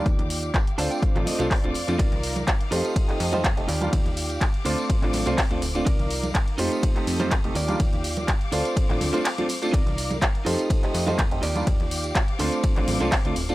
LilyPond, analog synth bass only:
\new Staff \with { instrumentName = "Analog synth bass" } { \clef bass \time 4/4 \key d \phrygian \tempo 4 = 124 ees,16 ees,8. r8 d,16 r8 a,,16 r16 c,16 r16 d,,16 f,16 f,16 | c,16 c,8. r8 f,16 r8. f,8. f,,16 ees,8 | ees,16 ees,8. r8 d,16 r8 a,,16 a,,16 c,16 r16 d,16 d,,8 | c,16 c,8. r8 f,16 r8. f,8. f,,16 ees,8 |
ees,16 ees,8. r8 d,16 r8 a,,16 d,16 r4 r16 | c,16 c,8. r8 f,16 r8. f,8. f,,16 ees,8 | ees,16 ees,8. r8 d,16 r8 a,,16 a,,16 c,16 r16 d,16 d,,8 | }